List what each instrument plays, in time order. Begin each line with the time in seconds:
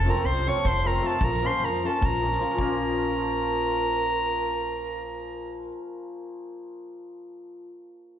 Already playing: clarinet A5
0.05 hammered dulcimer F3 A3 C4 F4, violin A#4, snare
0.10 clarinet A#5
0.15 snare
0.24 upright bass C2, violin C5, clarinet C6, snare
0.35 snare
0.46 hammered dulcimer F3 A3 C4 F4, violin C#5, clarinet C#6, snare
0.57 snare
0.64 upright bass F1, violin C5, clarinet C6, kick
0.84 hammered dulcimer F3 A3 C4 F4, violin A#4, clarinet A#5, snare
0.94 snare
1.01 hammered dulcimer F3 A3 C4 F4, violin A4, snare
1.07 clarinet A5
1.21 upright bass A#1, violin A#4, clarinet A#5, kick
1.33 snare
1.42 hammered dulcimer F3 A#3 C#4 F4, snare
1.46 violin C5, clarinet C6
1.53 snare
1.60 upright bass F2, violin A#4, snare
1.65 clarinet A#5
1.73 snare
1.84 hammered dulcimer F3 A#3 C#4 F4, violin A4, clarinet A5, snare
2.01 upright bass A#1, violin A#4, kick
2.06 clarinet A#5
2.13 snare
2.21 hammered dulcimer F3 A#3 C#4 F4, snare
2.32 snare
2.39 hammered dulcimer F3 A#3 C#4 F4, snare
2.50 snare
2.55 upright bass A#1, hammered dulcimer F3 A#3, kick
2.59 hammered dulcimer C#4 F4, violin A#4, clarinet A#5